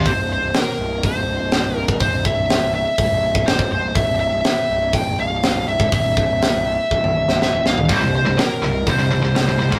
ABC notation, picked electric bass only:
X:1
M:4/4
L:1/16
Q:1/4=123
K:none
V:1 name="Picked electric bass" clef=bass
C,,, C,,,2 C,,, z2 C,,,2 C,,, C,,, C,,, C,,, C,,, C,,, C,,, _A,,, | C,,, C,,, C,,,3 C,,,2 z _D,,, C,,, C,,, C,,, C,,, E,,, C,,, C,,, | C,,, C,,,2 C,,, z2 C,,,2 C,,, C,,, C,,, C,,, C,,, C,,, C,,, _A,,, | C,,, C,,, C,,,3 C,,,2 z _D,,, C,,, C,,, C,,, C,,, E,,, C,,, C,,, |
C,,, C,,,2 C,,, z2 C,,,2 C,,, C,,, C,,, C,,, C,,, C,,, C,,, _A,,, |]